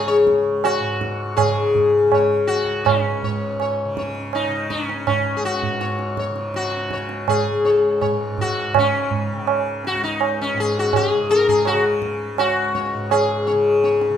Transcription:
Already playing: C#2 G#2 C#3
0.08 C#5
0.20 C#2
0.27 tabla ke
0.64 F#4, tabla na
0.80 G#2
1.01 tabla ke
1.37 G#4, tabla na, tabla ge
1.41 C#3
1.75 tabla ge
2.02 C#3
2.12 C#5, tabla na, tabla ge
2.47 F#4, tabla te
2.63 C#2
2.85 C#4, tabla na, tabla ge
3.23 G#2 C#5, tabla ge
3.60 C#5, tabla na
3.85 C#3
3.97 C#5, tabla ke
4.15 tabla te
4.33 D#4, tabla na
4.47 C#3
4.70 C#4, tabla ke
4.89 tabla te
5.07 C#2 C#4, tabla na, tabla ge
5.37 G#4
5.44 F#4, tabla te
5.63 tabla ge
5.70 G#2
5.80 C#5, tabla te
5.99 tabla te
6.17 C#5, tabla ke
6.30 C#3
6.36 tabla te
6.54 F#4, tabla te
6.72 tabla te
6.90 C#3 C#5, tabla ke
7.09 tabla te
7.28 G#4, tabla na, tabla ge
7.50 C#2
7.65 C#5, tabla te
8.01 C#5, tabla na, tabla ge
8.12 G#2
8.38 F#4, tabla ge
8.72 C#3, tabla na, tabla ge
8.79 C#4
9.11 tabla ge
9.32 C#3
9.47 A#3, tabla na
9.85 F#4, tabla te
9.93 C#2
10.04 D#4
10.21 tabla na
10.41 C#4
10.53 G#2
10.58 G#4, tabla te
10.79 F#4
10.93 G#4, tabla na, tabla ge
11.15 C#3
11.30 A#4, tabla te
11.48 G#4, tabla ge
11.65 F#4, tabla na
11.73 C#3
12.02 tabla ke
12.35 C#2, tabla na
12.39 F#4
12.75 C#5, tabla ke
12.94 G#2
13.11 G#4, tabla na
13.47 C#5, tabla te
13.51 C#3
13.84 C#5, tabla te
14.01 tabla te
14.10 C#3

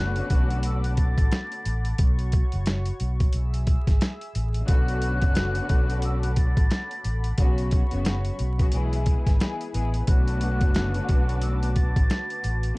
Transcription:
Already playing: F#1 D3 A3 B3 C#4 F#4 A4 F#5 B5 D6 F#6
0.16 closed hi-hat
0.30 B1, kick, closed hi-hat
0.50 closed hi-hat
0.63 E6, closed hi-hat
0.84 F#6, closed hi-hat
0.97 A6, kick, closed hi-hat
1.18 A1, kick, closed hi-hat
1.32 snare, closed hi-hat
1.52 closed hi-hat
1.65 A1, closed hi-hat
1.85 closed hi-hat
1.98 B1 F#4 C#5 C#6, kick, closed hi-hat
2.19 closed hi-hat
2.32 kick, closed hi-hat
2.52 F#1, closed hi-hat
2.66 snare, closed hi-hat
2.85 closed hi-hat
3.00 B1, closed hi-hat
3.20 kick, closed hi-hat
3.33 B1 G#4 E5 E6, closed hi-hat
3.54 closed hi-hat
3.67 kick, closed hi-hat
3.87 G#1, kick, snare, closed hi-hat
4.01 snare, closed hi-hat
4.21 closed hi-hat
4.35 A1, closed hi-hat
4.54 closed hi-hat
4.67 B1 D3 A3 B3 C#4 F#4 A4 F#5 B5 D6 F#6, kick, closed hi-hat
4.88 closed hi-hat
5.02 closed hi-hat
5.22 F#1, kick, closed hi-hat
5.35 snare, closed hi-hat
5.55 closed hi-hat
5.69 B1, kick, closed hi-hat
5.90 closed hi-hat
6.02 E6, closed hi-hat
6.23 F#6, closed hi-hat
6.36 A6, kick, closed hi-hat
6.57 A1, kick, closed hi-hat
6.71 snare, closed hi-hat
6.91 closed hi-hat
7.04 A1, closed hi-hat
7.24 closed hi-hat
7.38 B1 C#3 F#3 B3 C#4 F#4 C#5 C#6, kick, closed hi-hat
7.58 closed hi-hat
7.71 kick, closed hi-hat
7.89 F#1 C#3 F#3 B3 C#4 F#4, closed hi-hat
8.05 snare, closed hi-hat
8.25 closed hi-hat
8.39 B1, closed hi-hat
8.58 C#3 F#3 B3 C#4 F#4, kick, closed hi-hat
8.71 B1 E3 G#3 B3 E4 G#4 B4 G#5, closed hi-hat
8.93 closed hi-hat
9.06 kick, closed hi-hat
9.27 G#1, kick, snare, closed hi-hat
9.40 E3 G#3 B3 E4 G#4, snare, closed hi-hat
9.61 closed hi-hat
9.73 A1 E3 G#3 B3 E4 G#4, closed hi-hat
9.94 closed hi-hat
10.06 B1 D3 A3 B3 C#4 F#4 A5 D6 F#6, kick, closed hi-hat
10.28 closed hi-hat
10.41 closed hi-hat
10.61 F#1, kick, closed hi-hat
10.75 snare, closed hi-hat
10.94 closed hi-hat
11.09 B1, kick, closed hi-hat
11.29 closed hi-hat
11.41 E6, closed hi-hat
11.63 F#6, closed hi-hat
11.75 A6, kick, closed hi-hat
11.96 A1, kick, closed hi-hat
12.10 snare, closed hi-hat
12.30 closed hi-hat
12.44 A1, closed hi-hat
12.63 closed hi-hat

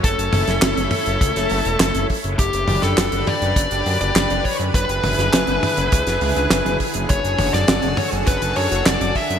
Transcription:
Already playing: C#4
0.04 F#1 A3 E4 A4, kick, closed hi-hat
0.18 F#1, closed hi-hat
0.33 F#1, open hi-hat, mid tom
0.48 F#1, snare, closed hi-hat
0.62 F#1, snare, clap, closed hi-hat
0.77 F#1, closed hi-hat
0.91 open hi-hat, mid tom
1.06 F#1, closed hi-hat
1.21 C#2, kick, closed hi-hat
1.36 F#1, snare, closed hi-hat
1.50 F#1, open hi-hat
1.65 E1, closed hi-hat
1.80 F#1, snare, clap, closed hi-hat
1.95 F#1, closed hi-hat
2.10 kick, open hi-hat
2.24 F#1, closed hi-hat
2.39 F#1 D3 D4 G4 B4, kick, closed hi-hat
2.53 F#1, closed hi-hat
2.68 F#1, open hi-hat, mid tom
2.82 F#1 A4, snare, closed hi-hat
2.98 F#1, snare, clap, closed hi-hat
3.12 F#1, closed hi-hat
3.27 D5, open hi-hat, mid tom
3.42 F#1, closed hi-hat
3.56 F#1, kick, closed hi-hat
3.71 F#1, closed hi-hat
3.86 F#2, open hi-hat
4.01 F#1 D5, closed hi-hat
4.15 F#1, snare, clap, closed hi-hat
4.30 F#1, closed hi-hat
4.45 C#5, kick, open hi-hat
4.60 F#2, closed hi-hat
4.74 F#1 E4 G#4 B4, kick, closed hi-hat
4.89 F#1, closed hi-hat
5.04 F#1, open hi-hat, mid tom
5.18 F#1, snare, closed hi-hat
5.33 F#1, snare, clap, closed hi-hat
5.47 F#1, closed hi-hat
5.63 open hi-hat, mid tom
5.77 F#1, closed hi-hat
5.92 C#2, kick, closed hi-hat
6.07 F#1, snare, closed hi-hat
6.21 C#2, open hi-hat
6.36 C#2, closed hi-hat
6.50 F#1, snare, clap, closed hi-hat
6.65 F#1, closed hi-hat
6.80 kick, open hi-hat
6.94 F#1, closed hi-hat
7.09 F#1 F#4 A4 C#5, kick, closed hi-hat
7.24 F#1, closed hi-hat
7.39 F#1, open hi-hat, mid tom
7.54 F#1 D5, snare, closed hi-hat
7.68 F#1, snare, clap, closed hi-hat
7.82 F#1, closed hi-hat
7.97 C#5, open hi-hat, mid tom
8.12 F#1, closed hi-hat
8.27 F#1 B4, kick, closed hi-hat
8.42 F#1, closed hi-hat
8.56 F#2 C#5, open hi-hat
8.71 F#1, closed hi-hat
8.86 F#1 D5, snare, clap, closed hi-hat
9.01 F#1, closed hi-hat
9.15 E5, kick, open hi-hat
9.30 F#2, closed hi-hat

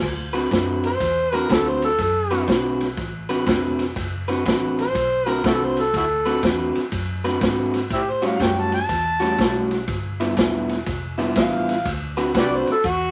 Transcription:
0.02 D2, kick, snare, crash
0.33 D3 C4 F#4 B4, snare, ride
0.51 F#2 D3 C4 F#4 B4, kick, snare, ride
0.84 C5, snare, ride
1.00 E2, kick, snare, ride
1.33 D3 C4 F#4 A#4 B4, snare, ride
1.49 D2 D3 C4 F#4 A4 B4, kick, snare, ride
1.68 C5
1.82 A4, snare, ride
1.98 F#2 A4, kick, snare, ride
2.31 D3 C4 F#4 B4, snare, ride
2.48 B1 D3 C4 F#4 B4, kick, snare, ride
2.81 snare, ride
2.97 A1, kick, snare, ride
3.29 D3 C4 F#4 B4, snare, ride
3.46 F1 D3 C4 F#4 B4, kick, snare, ride
3.79 snare, ride
3.96 F#1, kick, snare, ride
4.28 D3 C4 F#4 B4, snare, ride
4.45 A1 D3 C4 F#4 B4, kick, snare, ride
4.79 C5, snare, ride
4.95 B1, kick, snare, ride
5.26 D3 C4 F#4 A#4 B4, snare, ride
5.44 C2 D3 C4 E4 F#4 A4 B4, kick, snare, ride
5.64 C5
5.77 A4, snare, ride
5.94 D2 E4 F#4 A4, kick, snare, ride
6.26 D3 C4 F#4 B4, snare, ride
6.43 E2 D3 C4 F#4 B4, kick, snare, ride
6.75 snare, ride
6.92 F#2, kick, snare, ride
7.24 D3 C4 F#4 B4, snare, ride
7.41 G#2 D3 C4 F#4 B4, kick, snare, ride
7.74 snare, ride
7.90 A2 C4 E4 G4, kick, snare, ride
8.10 C5
8.22 A2 G3 C#4 F#4, snare, ride
8.27 F5
8.39 F#2 A2 G3 C#4 F#4 G5, kick, snare, ride
8.59 A5
8.72 A5, snare, ride
8.89 E2, kick, snare, ride
9.20 A2 G3 C#4 F#4, snare, ride
9.37 B1 A2 G3 C#4 F#4, kick, snare, ride
9.71 snare, ride
9.88 G1, kick, snare, ride
10.20 G2 F3 B3 E4, snare, ride
10.37 E1 G2 F3 B3 E4, kick, snare, ride
10.69 snare, ride
10.86 F1, kick, snare, ride
11.18 G2 F3 B3 E4, snare, ride
11.35 A1 G2 F3 B3 E4, kick, snare, ride
11.39 F5
11.69 snare, ride
11.86 D2, kick, snare, ride
12.17 D3 C4 F#4 B4, snare, ride
12.34 C2 D3 C4 F#4 B4, kick, snare, ride
12.38 G4 B4 D5
12.55 C5
12.67 snare, ride
12.72 A4
12.84 E2 F#4, kick, snare, ride

